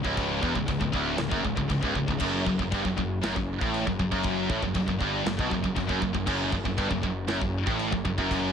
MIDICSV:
0, 0, Header, 1, 4, 480
1, 0, Start_track
1, 0, Tempo, 508044
1, 163, Time_signature, 4, 2, 24, 8
1, 8053, End_track
2, 0, Start_track
2, 0, Title_t, "Distorted electric guitar"
2, 0, Program_c, 0, 30
2, 39, Note_on_c, 0, 37, 104
2, 394, Note_off_c, 0, 37, 0
2, 400, Note_on_c, 0, 40, 106
2, 514, Note_off_c, 0, 40, 0
2, 525, Note_on_c, 0, 37, 76
2, 639, Note_off_c, 0, 37, 0
2, 650, Note_on_c, 0, 37, 74
2, 751, Note_off_c, 0, 37, 0
2, 762, Note_on_c, 0, 37, 77
2, 869, Note_off_c, 0, 37, 0
2, 873, Note_on_c, 0, 38, 117
2, 1111, Note_off_c, 0, 38, 0
2, 1118, Note_on_c, 0, 37, 73
2, 1238, Note_off_c, 0, 37, 0
2, 1242, Note_on_c, 0, 42, 96
2, 1356, Note_off_c, 0, 42, 0
2, 1368, Note_on_c, 0, 37, 81
2, 1470, Note_off_c, 0, 37, 0
2, 1481, Note_on_c, 0, 37, 72
2, 1589, Note_off_c, 0, 37, 0
2, 1601, Note_on_c, 0, 37, 72
2, 1717, Note_off_c, 0, 37, 0
2, 1728, Note_on_c, 0, 37, 103
2, 1839, Note_off_c, 0, 37, 0
2, 1853, Note_on_c, 0, 37, 73
2, 1959, Note_off_c, 0, 37, 0
2, 1970, Note_on_c, 0, 37, 75
2, 2088, Note_off_c, 0, 37, 0
2, 2092, Note_on_c, 0, 42, 115
2, 2321, Note_off_c, 0, 42, 0
2, 2332, Note_on_c, 0, 42, 75
2, 2440, Note_off_c, 0, 42, 0
2, 2452, Note_on_c, 0, 42, 76
2, 2565, Note_off_c, 0, 42, 0
2, 2569, Note_on_c, 0, 43, 105
2, 2680, Note_off_c, 0, 43, 0
2, 2686, Note_on_c, 0, 42, 79
2, 2797, Note_off_c, 0, 42, 0
2, 2809, Note_on_c, 0, 42, 82
2, 2999, Note_off_c, 0, 42, 0
2, 3053, Note_on_c, 0, 42, 109
2, 3162, Note_off_c, 0, 42, 0
2, 3182, Note_on_c, 0, 42, 76
2, 3366, Note_off_c, 0, 42, 0
2, 3421, Note_on_c, 0, 45, 98
2, 3646, Note_off_c, 0, 45, 0
2, 3654, Note_on_c, 0, 42, 77
2, 3762, Note_off_c, 0, 42, 0
2, 3773, Note_on_c, 0, 42, 80
2, 3878, Note_off_c, 0, 42, 0
2, 3889, Note_on_c, 0, 42, 106
2, 4240, Note_off_c, 0, 42, 0
2, 4256, Note_on_c, 0, 45, 105
2, 4364, Note_off_c, 0, 45, 0
2, 4379, Note_on_c, 0, 42, 72
2, 4492, Note_off_c, 0, 42, 0
2, 4503, Note_on_c, 0, 42, 76
2, 4608, Note_off_c, 0, 42, 0
2, 4620, Note_on_c, 0, 42, 81
2, 4733, Note_off_c, 0, 42, 0
2, 4738, Note_on_c, 0, 43, 118
2, 4965, Note_off_c, 0, 43, 0
2, 4981, Note_on_c, 0, 42, 75
2, 5093, Note_off_c, 0, 42, 0
2, 5098, Note_on_c, 0, 47, 106
2, 5205, Note_off_c, 0, 47, 0
2, 5212, Note_on_c, 0, 42, 78
2, 5315, Note_off_c, 0, 42, 0
2, 5327, Note_on_c, 0, 42, 70
2, 5430, Note_off_c, 0, 42, 0
2, 5442, Note_on_c, 0, 42, 74
2, 5549, Note_off_c, 0, 42, 0
2, 5560, Note_on_c, 0, 42, 111
2, 5671, Note_off_c, 0, 42, 0
2, 5682, Note_on_c, 0, 42, 78
2, 5783, Note_off_c, 0, 42, 0
2, 5795, Note_on_c, 0, 42, 79
2, 5908, Note_off_c, 0, 42, 0
2, 5920, Note_on_c, 0, 42, 115
2, 6149, Note_off_c, 0, 42, 0
2, 6161, Note_on_c, 0, 42, 75
2, 6276, Note_off_c, 0, 42, 0
2, 6287, Note_on_c, 0, 42, 78
2, 6399, Note_off_c, 0, 42, 0
2, 6403, Note_on_c, 0, 43, 104
2, 6516, Note_off_c, 0, 43, 0
2, 6528, Note_on_c, 0, 42, 79
2, 6635, Note_off_c, 0, 42, 0
2, 6647, Note_on_c, 0, 42, 80
2, 6837, Note_off_c, 0, 42, 0
2, 6881, Note_on_c, 0, 42, 111
2, 6992, Note_off_c, 0, 42, 0
2, 7004, Note_on_c, 0, 42, 71
2, 7195, Note_off_c, 0, 42, 0
2, 7242, Note_on_c, 0, 45, 94
2, 7474, Note_off_c, 0, 45, 0
2, 7478, Note_on_c, 0, 42, 73
2, 7594, Note_off_c, 0, 42, 0
2, 7605, Note_on_c, 0, 42, 79
2, 7714, Note_off_c, 0, 42, 0
2, 7726, Note_on_c, 0, 42, 110
2, 8053, Note_off_c, 0, 42, 0
2, 8053, End_track
3, 0, Start_track
3, 0, Title_t, "Picked electric bass"
3, 0, Program_c, 1, 34
3, 45, Note_on_c, 1, 25, 99
3, 379, Note_off_c, 1, 25, 0
3, 402, Note_on_c, 1, 28, 92
3, 514, Note_off_c, 1, 28, 0
3, 529, Note_on_c, 1, 25, 81
3, 638, Note_off_c, 1, 25, 0
3, 642, Note_on_c, 1, 25, 81
3, 754, Note_off_c, 1, 25, 0
3, 763, Note_on_c, 1, 25, 86
3, 875, Note_off_c, 1, 25, 0
3, 887, Note_on_c, 1, 26, 102
3, 1109, Note_off_c, 1, 26, 0
3, 1122, Note_on_c, 1, 25, 81
3, 1234, Note_off_c, 1, 25, 0
3, 1243, Note_on_c, 1, 30, 104
3, 1355, Note_off_c, 1, 30, 0
3, 1365, Note_on_c, 1, 25, 85
3, 1476, Note_off_c, 1, 25, 0
3, 1484, Note_on_c, 1, 25, 83
3, 1596, Note_off_c, 1, 25, 0
3, 1604, Note_on_c, 1, 25, 82
3, 1716, Note_off_c, 1, 25, 0
3, 1726, Note_on_c, 1, 25, 94
3, 1837, Note_off_c, 1, 25, 0
3, 1852, Note_on_c, 1, 25, 80
3, 1957, Note_off_c, 1, 25, 0
3, 1963, Note_on_c, 1, 25, 85
3, 2075, Note_off_c, 1, 25, 0
3, 2086, Note_on_c, 1, 30, 98
3, 2309, Note_off_c, 1, 30, 0
3, 2325, Note_on_c, 1, 30, 78
3, 2437, Note_off_c, 1, 30, 0
3, 2447, Note_on_c, 1, 30, 74
3, 2558, Note_off_c, 1, 30, 0
3, 2570, Note_on_c, 1, 31, 96
3, 2679, Note_off_c, 1, 31, 0
3, 2694, Note_on_c, 1, 30, 83
3, 2801, Note_off_c, 1, 30, 0
3, 2815, Note_on_c, 1, 30, 89
3, 3034, Note_off_c, 1, 30, 0
3, 3056, Note_on_c, 1, 30, 98
3, 3163, Note_off_c, 1, 30, 0
3, 3175, Note_on_c, 1, 30, 85
3, 3394, Note_off_c, 1, 30, 0
3, 3410, Note_on_c, 1, 33, 101
3, 3631, Note_off_c, 1, 33, 0
3, 3656, Note_on_c, 1, 30, 80
3, 3763, Note_off_c, 1, 30, 0
3, 3773, Note_on_c, 1, 30, 83
3, 3881, Note_off_c, 1, 30, 0
3, 3894, Note_on_c, 1, 30, 104
3, 4225, Note_off_c, 1, 30, 0
3, 4247, Note_on_c, 1, 33, 91
3, 4358, Note_off_c, 1, 33, 0
3, 4368, Note_on_c, 1, 30, 76
3, 4478, Note_off_c, 1, 30, 0
3, 4485, Note_on_c, 1, 30, 81
3, 4597, Note_off_c, 1, 30, 0
3, 4608, Note_on_c, 1, 30, 86
3, 4719, Note_off_c, 1, 30, 0
3, 4723, Note_on_c, 1, 31, 100
3, 4947, Note_off_c, 1, 31, 0
3, 4960, Note_on_c, 1, 30, 85
3, 5074, Note_off_c, 1, 30, 0
3, 5091, Note_on_c, 1, 35, 103
3, 5200, Note_off_c, 1, 35, 0
3, 5211, Note_on_c, 1, 30, 85
3, 5320, Note_off_c, 1, 30, 0
3, 5329, Note_on_c, 1, 30, 80
3, 5439, Note_off_c, 1, 30, 0
3, 5449, Note_on_c, 1, 30, 88
3, 5559, Note_off_c, 1, 30, 0
3, 5568, Note_on_c, 1, 30, 99
3, 5678, Note_off_c, 1, 30, 0
3, 5686, Note_on_c, 1, 30, 84
3, 5797, Note_off_c, 1, 30, 0
3, 5805, Note_on_c, 1, 30, 83
3, 5916, Note_off_c, 1, 30, 0
3, 5927, Note_on_c, 1, 30, 88
3, 6149, Note_off_c, 1, 30, 0
3, 6163, Note_on_c, 1, 30, 84
3, 6275, Note_off_c, 1, 30, 0
3, 6286, Note_on_c, 1, 30, 82
3, 6397, Note_off_c, 1, 30, 0
3, 6405, Note_on_c, 1, 31, 99
3, 6516, Note_off_c, 1, 31, 0
3, 6523, Note_on_c, 1, 30, 86
3, 6635, Note_off_c, 1, 30, 0
3, 6643, Note_on_c, 1, 30, 85
3, 6866, Note_off_c, 1, 30, 0
3, 6877, Note_on_c, 1, 30, 97
3, 6992, Note_off_c, 1, 30, 0
3, 7010, Note_on_c, 1, 30, 89
3, 7230, Note_off_c, 1, 30, 0
3, 7246, Note_on_c, 1, 33, 95
3, 7468, Note_off_c, 1, 33, 0
3, 7483, Note_on_c, 1, 30, 87
3, 7594, Note_off_c, 1, 30, 0
3, 7606, Note_on_c, 1, 30, 81
3, 7716, Note_off_c, 1, 30, 0
3, 7725, Note_on_c, 1, 30, 95
3, 8053, Note_off_c, 1, 30, 0
3, 8053, End_track
4, 0, Start_track
4, 0, Title_t, "Drums"
4, 44, Note_on_c, 9, 36, 84
4, 138, Note_off_c, 9, 36, 0
4, 163, Note_on_c, 9, 52, 65
4, 164, Note_on_c, 9, 36, 101
4, 257, Note_off_c, 9, 52, 0
4, 258, Note_off_c, 9, 36, 0
4, 404, Note_on_c, 9, 36, 101
4, 498, Note_off_c, 9, 36, 0
4, 524, Note_on_c, 9, 36, 84
4, 619, Note_off_c, 9, 36, 0
4, 641, Note_on_c, 9, 52, 64
4, 643, Note_on_c, 9, 36, 100
4, 735, Note_off_c, 9, 52, 0
4, 737, Note_off_c, 9, 36, 0
4, 763, Note_on_c, 9, 36, 83
4, 858, Note_off_c, 9, 36, 0
4, 883, Note_on_c, 9, 36, 84
4, 978, Note_off_c, 9, 36, 0
4, 1113, Note_on_c, 9, 52, 64
4, 1118, Note_on_c, 9, 38, 108
4, 1208, Note_off_c, 9, 52, 0
4, 1212, Note_off_c, 9, 38, 0
4, 1243, Note_on_c, 9, 36, 111
4, 1337, Note_off_c, 9, 36, 0
4, 1366, Note_on_c, 9, 36, 84
4, 1460, Note_off_c, 9, 36, 0
4, 1485, Note_on_c, 9, 36, 84
4, 1579, Note_off_c, 9, 36, 0
4, 1602, Note_on_c, 9, 52, 63
4, 1604, Note_on_c, 9, 36, 96
4, 1697, Note_off_c, 9, 52, 0
4, 1699, Note_off_c, 9, 36, 0
4, 1726, Note_on_c, 9, 36, 87
4, 1820, Note_off_c, 9, 36, 0
4, 1846, Note_on_c, 9, 36, 78
4, 1941, Note_off_c, 9, 36, 0
4, 1966, Note_on_c, 9, 36, 85
4, 2060, Note_off_c, 9, 36, 0
4, 2075, Note_on_c, 9, 49, 98
4, 2075, Note_on_c, 9, 52, 62
4, 2086, Note_on_c, 9, 36, 102
4, 2170, Note_off_c, 9, 49, 0
4, 2170, Note_off_c, 9, 52, 0
4, 2180, Note_off_c, 9, 36, 0
4, 2328, Note_on_c, 9, 36, 84
4, 2423, Note_off_c, 9, 36, 0
4, 2449, Note_on_c, 9, 36, 81
4, 2544, Note_off_c, 9, 36, 0
4, 2567, Note_on_c, 9, 52, 65
4, 2571, Note_on_c, 9, 36, 97
4, 2661, Note_off_c, 9, 52, 0
4, 2666, Note_off_c, 9, 36, 0
4, 2693, Note_on_c, 9, 36, 81
4, 2787, Note_off_c, 9, 36, 0
4, 2813, Note_on_c, 9, 36, 86
4, 2908, Note_off_c, 9, 36, 0
4, 3054, Note_on_c, 9, 52, 64
4, 3058, Note_on_c, 9, 38, 122
4, 3148, Note_off_c, 9, 52, 0
4, 3153, Note_off_c, 9, 38, 0
4, 3176, Note_on_c, 9, 36, 95
4, 3270, Note_off_c, 9, 36, 0
4, 3415, Note_on_c, 9, 36, 104
4, 3509, Note_off_c, 9, 36, 0
4, 3534, Note_on_c, 9, 52, 68
4, 3629, Note_off_c, 9, 52, 0
4, 3658, Note_on_c, 9, 36, 89
4, 3752, Note_off_c, 9, 36, 0
4, 3774, Note_on_c, 9, 36, 82
4, 3869, Note_off_c, 9, 36, 0
4, 3891, Note_on_c, 9, 36, 81
4, 3986, Note_off_c, 9, 36, 0
4, 3998, Note_on_c, 9, 52, 61
4, 4010, Note_on_c, 9, 36, 96
4, 4093, Note_off_c, 9, 52, 0
4, 4104, Note_off_c, 9, 36, 0
4, 4249, Note_on_c, 9, 36, 101
4, 4344, Note_off_c, 9, 36, 0
4, 4370, Note_on_c, 9, 36, 81
4, 4464, Note_off_c, 9, 36, 0
4, 4483, Note_on_c, 9, 52, 70
4, 4488, Note_on_c, 9, 36, 93
4, 4578, Note_off_c, 9, 52, 0
4, 4582, Note_off_c, 9, 36, 0
4, 4608, Note_on_c, 9, 36, 85
4, 4703, Note_off_c, 9, 36, 0
4, 4729, Note_on_c, 9, 36, 84
4, 4824, Note_off_c, 9, 36, 0
4, 4971, Note_on_c, 9, 52, 63
4, 4976, Note_on_c, 9, 38, 114
4, 5066, Note_off_c, 9, 52, 0
4, 5070, Note_off_c, 9, 38, 0
4, 5091, Note_on_c, 9, 36, 113
4, 5185, Note_off_c, 9, 36, 0
4, 5210, Note_on_c, 9, 36, 89
4, 5304, Note_off_c, 9, 36, 0
4, 5328, Note_on_c, 9, 36, 84
4, 5422, Note_off_c, 9, 36, 0
4, 5446, Note_on_c, 9, 36, 97
4, 5446, Note_on_c, 9, 52, 67
4, 5540, Note_off_c, 9, 52, 0
4, 5541, Note_off_c, 9, 36, 0
4, 5567, Note_on_c, 9, 36, 86
4, 5661, Note_off_c, 9, 36, 0
4, 5687, Note_on_c, 9, 36, 82
4, 5782, Note_off_c, 9, 36, 0
4, 5806, Note_on_c, 9, 36, 80
4, 5901, Note_off_c, 9, 36, 0
4, 5924, Note_on_c, 9, 36, 104
4, 5928, Note_on_c, 9, 49, 97
4, 5928, Note_on_c, 9, 52, 62
4, 6019, Note_off_c, 9, 36, 0
4, 6022, Note_off_c, 9, 49, 0
4, 6022, Note_off_c, 9, 52, 0
4, 6164, Note_on_c, 9, 36, 92
4, 6258, Note_off_c, 9, 36, 0
4, 6285, Note_on_c, 9, 36, 84
4, 6380, Note_off_c, 9, 36, 0
4, 6406, Note_on_c, 9, 36, 95
4, 6409, Note_on_c, 9, 52, 62
4, 6500, Note_off_c, 9, 36, 0
4, 6503, Note_off_c, 9, 52, 0
4, 6526, Note_on_c, 9, 36, 82
4, 6620, Note_off_c, 9, 36, 0
4, 6644, Note_on_c, 9, 36, 84
4, 6739, Note_off_c, 9, 36, 0
4, 6878, Note_on_c, 9, 52, 59
4, 6883, Note_on_c, 9, 38, 110
4, 6973, Note_off_c, 9, 52, 0
4, 6978, Note_off_c, 9, 38, 0
4, 7006, Note_on_c, 9, 36, 98
4, 7100, Note_off_c, 9, 36, 0
4, 7246, Note_on_c, 9, 36, 101
4, 7341, Note_off_c, 9, 36, 0
4, 7363, Note_on_c, 9, 52, 65
4, 7458, Note_off_c, 9, 52, 0
4, 7487, Note_on_c, 9, 36, 93
4, 7582, Note_off_c, 9, 36, 0
4, 7607, Note_on_c, 9, 36, 84
4, 7701, Note_off_c, 9, 36, 0
4, 7728, Note_on_c, 9, 36, 76
4, 7823, Note_off_c, 9, 36, 0
4, 7851, Note_on_c, 9, 36, 98
4, 7856, Note_on_c, 9, 52, 69
4, 7945, Note_off_c, 9, 36, 0
4, 7950, Note_off_c, 9, 52, 0
4, 8053, End_track
0, 0, End_of_file